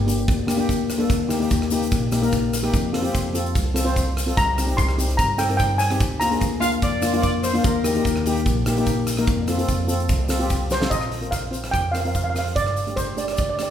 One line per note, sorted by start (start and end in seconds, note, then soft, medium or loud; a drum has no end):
0.00 0.26 G1 loud
0.07 0.32 A#3 medium
0.07 0.32 D4 medium
0.07 0.32 G4 medium
0.07 closed hi-hat medium
0.07 shaker loud
0.18 closed hi-hat medium
0.18 shaker soft
0.28 1.06 D2 loud
0.28 kick loud
0.28 closed hi-hat medium
0.28 shaker medium
0.47 0.54 A#3 medium
0.47 0.54 D4 medium
0.47 0.54 G4 medium
0.47 cross-stick medium
0.47 closed hi-hat medium
0.47 shaker medium
0.57 0.83 A#3 medium
0.57 0.83 D4 medium
0.57 0.83 G4 loud
0.57 closed hi-hat medium
0.69 kick medium
0.69 closed hi-hat medium
0.69 shaker medium
0.90 cross-stick medium
0.90 closed hi-hat medium
0.90 shaker medium
0.98 1.09 A#3 loud
0.98 1.09 D4 medium
0.98 1.09 A4 medium
0.98 closed hi-hat medium
1.09 1.48 D#2 loud
1.09 kick loud
1.09 closed hi-hat medium
1.09 shaker medium
1.28 1.36 A#3 medium
1.28 1.36 D#4 medium
1.28 1.36 G4 medium
1.28 cross-stick medium
1.28 closed hi-hat medium
1.28 shaker medium
1.39 1.58 A#3 medium
1.39 1.58 D#4 medium
1.39 1.59 G4 loud
1.39 closed hi-hat medium
1.50 1.89 D#2 loud
1.50 kick medium
1.50 closed hi-hat medium
1.50 shaker medium
1.62 cross-stick medium
1.71 1.96 A#3 medium
1.71 1.96 D#4 medium
1.71 1.96 G4 loud
1.71 closed hi-hat medium
1.71 shaker medium
1.83 closed hi-hat medium
1.83 shaker soft
1.91 2.69 A#1 medium
1.91 kick loud
1.91 closed hi-hat medium
1.91 shaker medium
2.12 2.18 A#3 medium
2.12 2.19 D#4 medium
2.12 2.18 G4 medium
2.12 cross-stick medium
2.12 closed hi-hat loud
2.12 shaker medium
2.22 2.47 A#3 loud
2.22 2.47 D#4 medium
2.22 2.47 A#4 loud
2.22 closed hi-hat medium
2.22 shaker soft
2.32 kick medium
2.32 closed hi-hat medium
2.32 shaker medium
2.53 cross-stick medium
2.53 closed hi-hat medium
2.53 shaker loud
2.63 2.73 A#3 medium
2.63 2.73 D#4 medium
2.63 2.73 G4 loud
2.63 cross-stick medium
2.63 closed hi-hat medium
2.73 3.12 F2 loud
2.73 kick loud
2.73 closed hi-hat medium
2.73 shaker medium
2.92 2.99 C4 medium
2.92 2.99 F4 medium
2.92 3.00 A4 medium
2.92 cross-stick medium
2.92 closed hi-hat medium
3.02 3.22 C4 medium
3.02 3.22 F4 medium
3.02 3.22 G4 loud
3.02 closed hi-hat medium
3.02 shaker soft
3.14 3.53 F2 loud
3.14 kick medium
3.14 closed hi-hat medium
3.14 shaker medium
3.33 3.59 C4 medium
3.33 3.59 F4 medium
3.33 3.59 A4 medium
3.33 closed hi-hat medium
3.33 shaker loud
3.46 closed hi-hat medium
3.46 shaker soft
3.55 4.33 C2 medium
3.55 kick loud
3.55 closed hi-hat medium
3.55 shaker medium
3.74 3.81 C4 medium
3.74 3.81 F4 medium
3.74 3.81 A4 medium
3.74 cross-stick medium
3.74 closed hi-hat medium
3.74 shaker loud
3.84 4.10 C4 medium
3.84 4.10 F4 medium
3.84 4.10 C5 loud
3.84 closed hi-hat medium
3.84 shaker soft
3.96 kick medium
3.96 closed hi-hat medium
3.96 shaker medium
4.17 cross-stick medium
4.17 closed hi-hat medium
4.17 shaker medium
4.26 4.36 C4 medium
4.26 4.37 F4 medium
4.26 4.37 A4 medium
4.26 closed hi-hat medium
4.26 shaker soft
4.37 4.76 C2 loud
4.37 4.75 A#5 loud
4.37 kick loud
4.37 closed hi-hat medium
4.37 shaker medium
4.58 4.64 C4 medium
4.58 4.64 D#4 medium
4.58 4.64 G4 medium
4.58 cross-stick medium
4.58 closed hi-hat medium
4.58 shaker medium
4.67 4.86 C4 medium
4.67 4.86 D#4 medium
4.67 4.86 G4 medium
4.67 closed hi-hat medium
4.77 5.17 C2 loud
4.77 5.19 C6 loud
4.77 kick medium
4.77 closed hi-hat medium
4.77 shaker medium
4.89 cross-stick medium
4.98 5.23 C4 medium
4.98 5.23 D#4 medium
4.98 5.23 G4 medium
4.98 closed hi-hat medium
4.98 shaker loud
5.09 closed hi-hat medium
5.09 shaker soft
5.17 5.96 G2 medium
5.17 5.37 A#5 loud
5.17 kick loud
5.17 closed hi-hat medium
5.17 shaker medium
5.38 5.45 C4 medium
5.38 5.45 D#4 medium
5.38 5.45 A4 medium
5.38 5.56 G5 medium
5.38 cross-stick loud
5.38 closed hi-hat medium
5.38 shaker loud
5.50 5.74 C4 medium
5.50 5.74 D#4 medium
5.50 5.74 A#4 medium
5.50 closed hi-hat medium
5.50 shaker soft
5.57 5.79 G5 medium
5.57 kick medium
5.57 closed hi-hat medium
5.57 shaker medium
5.78 6.17 G#5 medium
5.78 cross-stick medium
5.78 closed hi-hat medium
5.78 shaker loud
5.90 6.00 C4 medium
5.90 6.01 D#4 medium
5.90 6.01 G4 medium
5.90 cross-stick medium
5.90 closed hi-hat medium
6.00 6.39 D2 loud
6.00 kick loud
6.00 closed hi-hat medium
6.00 shaker medium
6.20 6.27 A#3 medium
6.20 6.27 D4 medium
6.20 6.27 F4 medium
6.20 6.98 A#5 medium
6.20 cross-stick medium
6.20 closed hi-hat medium
6.20 shaker loud
6.31 6.49 A#3 medium
6.31 6.50 D4 medium
6.31 6.49 G#4 medium
6.31 closed hi-hat medium
6.41 6.80 D2 medium
6.41 kick medium
6.41 closed hi-hat medium
6.41 shaker medium
6.60 6.86 A#3 medium
6.60 6.86 D4 medium
6.60 6.86 F4 medium
6.60 6.70 F5 loud
6.60 closed hi-hat medium
6.60 shaker loud
6.72 closed hi-hat medium
6.82 7.60 F2 medium
6.82 7.21 D5 medium
6.82 kick loud
6.82 closed hi-hat medium
6.82 shaker medium
7.02 7.08 A#3 medium
7.02 7.08 D4 medium
7.02 7.09 F4 medium
7.02 cross-stick medium
7.02 closed hi-hat medium
7.02 shaker loud
7.13 7.38 A#3 medium
7.13 7.38 D4 medium
7.13 7.38 F4 loud
7.13 closed hi-hat medium
7.13 shaker soft
7.23 7.32 D5 medium
7.23 kick medium
7.23 closed hi-hat medium
7.23 shaker medium
7.43 7.62 C5 medium
7.43 cross-stick medium
7.43 closed hi-hat medium
7.43 shaker loud
7.53 7.64 A#3 loud
7.53 7.63 D4 medium
7.53 7.64 F4 loud
7.53 closed hi-hat medium
7.64 8.03 D#2 loud
7.64 8.42 A#4 medium
7.64 kick loud
7.64 closed hi-hat medium
7.64 shaker medium
7.84 7.90 A#3 medium
7.84 7.90 D#4 medium
7.84 7.90 G4 medium
7.84 cross-stick medium
7.84 closed hi-hat medium
7.84 shaker loud
7.95 8.13 A#3 medium
7.95 8.14 D#4 medium
7.95 8.14 G4 medium
7.95 closed hi-hat medium
8.05 8.43 D#2 loud
8.05 kick medium
8.05 closed hi-hat medium
8.05 shaker medium
8.16 cross-stick medium
8.26 8.50 A#3 medium
8.26 8.51 D#4 medium
8.26 8.51 G4 loud
8.26 closed hi-hat medium
8.26 shaker loud
8.36 closed hi-hat medium
8.36 shaker soft
8.46 9.23 A#1 loud
8.46 kick loud
8.46 closed hi-hat medium
8.46 shaker medium
8.66 8.73 A#3 medium
8.66 8.73 D#4 medium
8.66 8.73 G4 loud
8.66 cross-stick loud
8.66 closed hi-hat medium
8.66 shaker medium
8.77 9.02 A#3 medium
8.77 9.02 D#4 medium
8.77 9.02 G4 loud
8.77 closed hi-hat medium
8.77 shaker soft
8.86 kick medium
8.86 closed hi-hat medium
8.86 shaker medium
9.07 cross-stick medium
9.07 closed hi-hat medium
9.07 shaker medium
9.17 9.28 A#3 medium
9.17 9.28 D#4 medium
9.17 9.28 A#4 loud
9.17 cross-stick medium
9.17 closed hi-hat medium
9.27 9.66 F2 loud
9.27 kick loud
9.27 closed hi-hat medium
9.27 shaker medium
9.48 9.54 C4 medium
9.48 9.54 F4 medium
9.48 9.55 A4 medium
9.48 cross-stick medium
9.48 closed hi-hat medium
9.48 shaker medium
9.58 9.77 C4 medium
9.58 9.77 F4 medium
9.58 9.77 A4 medium
9.58 closed hi-hat medium
9.58 shaker soft
9.69 10.07 F2 loud
9.69 kick medium
9.69 closed hi-hat medium
9.69 shaker medium
9.88 10.13 C4 medium
9.88 10.13 F4 medium
9.88 10.13 A4 loud
9.88 closed hi-hat medium
9.88 shaker loud
9.99 closed hi-hat medium
9.99 shaker soft
10.09 10.87 C2 medium
10.09 kick loud
10.09 closed hi-hat medium
10.09 shaker medium
10.29 10.36 C4 medium
10.29 10.36 F4 medium
10.29 10.36 A4 medium
10.29 cross-stick medium
10.29 closed hi-hat loud
10.29 shaker medium
10.39 10.64 C4 medium
10.39 10.64 F4 medium
10.39 10.64 G4 loud
10.39 closed hi-hat medium
10.39 shaker soft
10.50 kick medium
10.50 closed hi-hat medium
10.50 shaker medium
10.70 10.92 C5 medium
10.70 snare medium
10.70 shaker medium
10.80 10.91 C4 medium
10.80 10.91 F4 medium
10.80 10.91 A4 loud
10.80 snare medium
10.80 shaker soft
10.90 11.69 A#1 medium
10.90 11.33 D#5 medium
10.90 kick medium
10.90 closed hi-hat medium
10.90 shaker medium
11.01 cross-stick medium
11.12 closed hi-hat medium
11.21 11.40 C4 medium
11.21 11.40 F4 medium
11.21 11.41 A#4 medium
11.21 closed hi-hat soft
11.31 11.74 F5 medium
11.31 kick medium
11.31 cross-stick medium
11.31 closed hi-hat medium
11.31 shaker medium
11.51 11.77 C4 medium
11.51 11.77 F4 medium
11.51 11.77 C5 medium
11.51 closed hi-hat medium
11.51 shaker medium
11.64 cross-stick medium
11.64 closed hi-hat medium
11.71 12.52 F2 medium
11.71 11.81 G5 loud
11.71 kick medium
11.71 closed hi-hat medium
11.71 shaker medium
11.92 12.00 C4 medium
11.92 12.00 F4 medium
11.92 12.01 A#4 medium
11.92 11.99 F5 medium
11.92 cross-stick medium
11.92 closed hi-hat medium
11.92 shaker medium
12.01 12.06 F5 medium
12.05 12.23 C4 medium
12.05 12.23 F4 medium
12.05 12.24 A#4 medium
12.05 12.14 F5 medium
12.05 closed hi-hat soft
12.15 12.23 F5 medium
12.15 kick medium
12.15 closed hi-hat soft
12.15 shaker medium
12.24 12.29 F5 medium
12.30 12.37 F5 medium
12.35 12.56 C4 medium
12.35 12.55 F4 medium
12.35 12.56 A#4 medium
12.35 12.47 F5 medium
12.35 cross-stick medium
12.35 closed hi-hat medium
12.35 shaker medium
12.46 closed hi-hat soft
12.56 13.34 G1 medium
12.56 12.98 D5 medium
12.56 kick loud
12.56 closed hi-hat medium
12.56 shaker medium
12.66 cross-stick medium
12.76 closed hi-hat medium
12.76 shaker medium
12.87 13.05 A3 medium
12.87 13.05 D4 medium
12.87 13.06 G4 medium
12.87 closed hi-hat medium
12.96 13.18 C5 medium
12.96 kick medium
12.96 cross-stick medium
12.96 closed hi-hat medium
12.96 shaker medium
13.16 13.42 A3 medium
13.16 13.42 D4 medium
13.16 13.42 G4 medium
13.16 13.24 D5 medium
13.16 closed hi-hat medium
13.16 shaker medium
13.25 13.32 D5 soft
13.25 cross-stick medium
13.25 closed hi-hat medium
13.33 13.39 D5 medium
13.37 13.70 D2 medium
13.37 13.48 D5 medium
13.37 kick loud
13.37 closed hi-hat medium
13.37 shaker medium
13.50 13.55 D5 medium
13.56 13.65 A3 medium
13.56 13.65 D4 medium
13.56 13.65 G4 medium
13.56 13.61 D5 soft
13.56 cross-stick medium
13.56 closed hi-hat medium
13.56 shaker medium
13.63 13.70 D5 medium